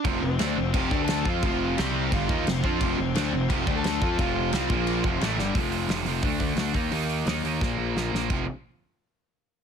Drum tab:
CC |x-x-x-x-|x-x-x-x-|x-x-x-x-|x-x-x-x-|
HH |--------|--------|--------|--------|
SD |--o---o-|--o---o-|--o---o-|--o---oo|
BD |o---oo-o|o---oo-o|o---oo-o|o--o-o--|

CC |--------|--------|x-------|
HH |oooooooo|oooo----|--------|
SD |--o---o-|--o-o-oo|--------|
BD |o---oo-o|----o---|o-------|